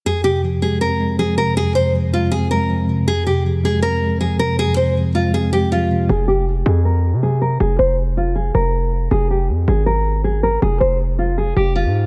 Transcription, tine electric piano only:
\new Staff \with { instrumentName = "Tine electric piano" } { \clef bass \time 4/4 \key f \minor \tempo 4 = 159 f,8 c8 f8 aes8 c'8 aes8 f8 c8 | f,8 c8 f8 aes8 c'8 aes8 f8 c8 | f,8 c8 f8 aes8 c'8 aes8 f8 c8 | f,8 c8 f8 aes8 c'8 aes8 f8 c8 |
r1 | r1 | r1 | r1 | }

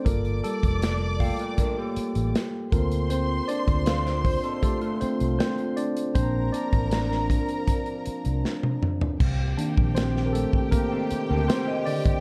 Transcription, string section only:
\new Staff \with { instrumentName = "String section" } { \time 4/4 \key d \phrygian \tempo 4 = 79 <d'' d'''>2. r8 <c'' c'''>8~ | <c'' c'''>2.~ <c'' c'''>8 r8 | <bes' bes''>2.~ <bes' bes''>8 r8 | <g' g''>1 | }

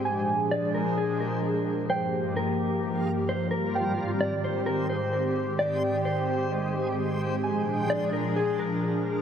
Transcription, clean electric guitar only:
\new Staff \with { instrumentName = "Clean electric guitar" } { \time 4/4 \key aes \lydian \tempo 4 = 130 r4 d''8 bes'8 aes'8 bes'4. | c''4 bes'2 c''8 bes'8 | r4 d''8 c''8 bes'8 c''4. | d''4 c''2. |
r4 d''8 bes'8 aes'8 bes'4. | }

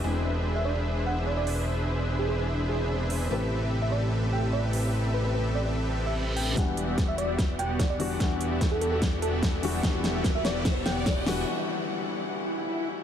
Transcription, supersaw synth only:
\new Staff \with { instrumentName = "Supersaw synth" } { \time 4/4 \key e \minor \tempo 4 = 147 <d' gis' b' c'' e''>1~ | <d' gis' b' c'' e''>1 | <c' g' a' b' e''>1~ | <c' g' a' b' e''>1 |
b2~ b8 <b fis' g' d'' fis''>4. | <b d'' e''>2.~ <b d'' e''>8 <b fis' g' d'' e''>8 | <fis' g' d'' e''>2~ <fis' g' d'' e''>8 <b fis' g' d'' fis''>4. | r1 | }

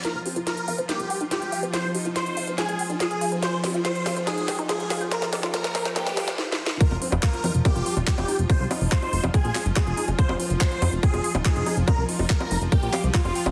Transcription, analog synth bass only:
\new Staff \with { instrumentName = "Analog synth bass" } { \clef bass \time 4/4 \key f \minor \tempo 4 = 142 r16 f,,16 r16 f,,16 r8 f,16 f,,16 r16 f,,16 r16 ees,,16 r16 f,,16 r16 f,,16 | r16 c,16 r16 f,,16 r8 f,,16 f,,16 r16 bes,,16 r16 bes,,16 r16 f,,16 r16 f,,16 | r16 f,,16 r16 f,,16 r8 f,16 f,,16 r16 f,,16 r16 ees,,16 r16 f,,16 r16 f,,16 | r16 c,16 r16 f,,16 r8 f,,16 f,,16 r16 bes,,16 r16 g,,16 r4 |
r16 f,,16 r16 f,,16 r8 f,16 f,,16 r16 f,,16 r16 ees,,16 r16 f,,16 r16 f,,16 | r16 c,16 r16 f,,16 r8 f,,16 f,,16 r16 bes,,16 r16 g,,16 r16 f,,16 r16 f,,16 | r16 f,,16 r16 f,,16 r8 f,16 f,,16 r16 f,,16 r16 ees,,16 r16 f,,16 r16 f,,16 | r16 c,16 r16 f,,16 r8 f,,16 f,,16 r16 bes,,16 r16 c,16 r16 f,,16 r16 f,,16 | }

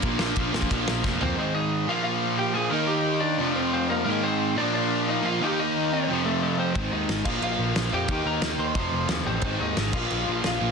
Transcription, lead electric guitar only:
\new Staff \with { instrumentName = "Lead electric guitar" } { \time 4/4 \key bes \mixolydian \tempo 4 = 179 <d' d''>2. r8 <c' c''>8 | <c' c''>8 <ees' ees''>4 <f' f''>8 <f' f''>4 <g' g''>8 <aes' aes''>8 | <bes' bes''>8 <g' g''>4 <d' d''>4 <c' c''>8 <c' c''>8 <bes bes'>8 | <bes bes'>8 <c' c''>4 <d' d''>8 <d' d''>4 <ees' ees''>8 <f' f''>8 |
<g' g''>8 <ees' ees''>4 <c' c''>4 <a a'>8 <a a'>8 <c' c''>8 | <c' c''>8 <ees' ees''>4 <f' f''>8 <f' f''>4 r8 <g' g''>8 | <g' g''>8 <bes' bes''>4 <c'' c'''>8 <c'' c'''>4 r8 <c' c''>8 | <c' c''>8 <ees' ees''>4 <f' f''>4. <f' f''>4 | }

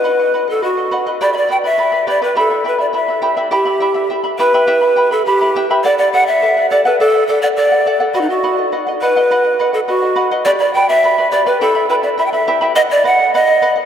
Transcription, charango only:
\new Staff \with { instrumentName = "Charango" } { \time 2/4 \key b \phrygian \tempo 4 = 104 <b' dis'' fis''>16 <dis'' fis''>16 <b' dis'' fis''>16 <dis'' fis''>16 <b' dis'' fis''>16 <dis'' fis''>16 <b' dis'' fis''>16 <b' dis'' fis''>16 | <g' b' d'' g'' b''>16 <b' d'' b''>16 <b' d'' g'' b''>16 <b' d'' b''>16 <b' d'' g'' b''>16 <b' d'' b''>16 <g' b' d'' g'' b''>16 <g' b' d'' g'' b''>16 | <e' g' e'' g'' b''>16 <e' e'' b''>16 <e' e'' g'' b''>16 <e' e'' b''>16 <e' e'' g'' b''>16 <e' e'' b''>16 <e' g' e'' g'' b''>16 <e' g' e'' g'' b''>16 | <e' g' e'' g'' b''>16 <e' e'' b''>16 <e' e'' g'' b''>16 <e' e'' b''>16 <e' e'' g'' b''>16 <e' e'' b''>16 <e' g' e'' g'' b''>16 <e' g' e'' g'' b''>16 |
<e' g' e'' g'' b''>16 <e' e'' b''>16 <e' e'' g'' b''>16 <e' e'' b''>16 <e' e'' g'' b''>16 <e' e'' b''>16 <e' g' e'' g'' b''>16 <e' g' e'' g'' b''>16 | <a' d'' fis''>16 <d'' fis''>16 <a' d'' fis''>16 <d'' fis''>16 <a' d'' fis''>16 <d'' fis''>16 <a' d'' fis''>16 <a' d'' fis''>16 | <a' d'' fis''>16 <d'' fis''>16 <a' d'' fis''>16 <d'' fis''>16 <a' d'' fis''>16 <d'' fis''>16 <a' d'' fis''>16 <a' d'' fis''>16 | <b' dis'' fis''>16 <dis'' fis''>16 <b' dis'' fis''>16 <dis'' fis''>16 <b' dis'' fis''>16 <dis'' fis''>16 <b' dis'' fis''>16 <b' dis'' fis''>16 |
<b' dis'' fis''>16 <dis'' fis''>16 <b' dis'' fis''>16 <dis'' fis''>16 <b' dis'' fis''>16 <dis'' fis''>16 <b' dis'' fis''>16 <b' dis'' fis''>16 | <g' b' d'' g'' b''>16 <b' d'' b''>16 <b' d'' g'' b''>16 <b' d'' b''>16 <b' d'' g'' b''>16 <b' d'' b''>16 <g' b' d'' g'' b''>16 <g' b' d'' g'' b''>16 | <e' g' e'' g'' b''>16 <e' e'' b''>16 <e' e'' g'' b''>16 <e' e'' b''>16 <e' e'' g'' b''>16 <e' e'' b''>16 <e' g' e'' g'' b''>16 <e' g' e'' g'' b''>16 | <b' dis'' fis''>16 <dis'' fis''>16 <b' dis'' fis''>16 <dis'' fis''>16 <b' dis'' fis''>16 <dis'' fis''>16 <b' dis'' fis''>16 <dis'' fis''>16 | }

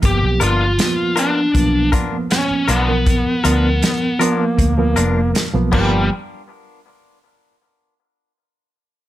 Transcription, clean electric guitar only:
\new Staff \with { instrumentName = "Clean electric guitar" } { \time 4/4 \key g \mixolydian \tempo 4 = 79 r8 <b d' f' ais'>8 r8 <b d' f' ais'>8 r8 <b d' f' ais'>8 r8 <b d' f' ais'>8 | r8 <b d' f' ais'>8 r8 <b d' f' ais'>8 r8 <b d' f' ais'>8 r8 <b d' f' ais'>8 | r1 | }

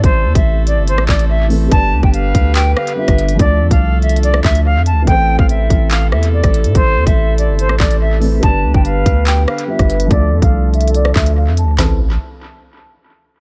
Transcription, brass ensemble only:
\new Staff \with { instrumentName = "Brass ensemble" } { \time 4/4 \key a \minor \tempo 4 = 143 << { <a e' a'>1 | <b g' b'>1 | <a f' a'>1 | <a e' a'>1~ |
<a e' a'>1 | <b g' b'>1 | <a f' a'>1 | <c a e' a'>8 r2. r8 | } \\ { c1 | d1~ | d1 | c1~ |
c1 | d1 | d1 | r1 | } >> }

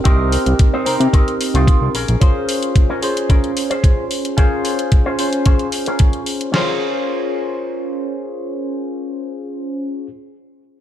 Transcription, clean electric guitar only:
\new Staff \with { instrumentName = "Clean electric guitar" } { \time 4/4 \key bes \dorian \tempo 4 = 111 <c' ees' bes'>8 r8. <c' ees' c''>16 r8 <c' ees' bes'>8 r16 <c' ees' f'>8. <des' aes' bes'>8~ | <des' aes' bes'>4 r16 <des' aes' bes'>16 r8 <des' aes' bes'>8 r16 <des' aes' c''>8. r8 | <des' aes' bes'>8 r8. <des' aes' c''>16 r8 <des' aes' c''>8 r16 <des' aes' bes'>8. r8 | <des' aes' bes'>1~ |
<des' aes' bes'>1 | }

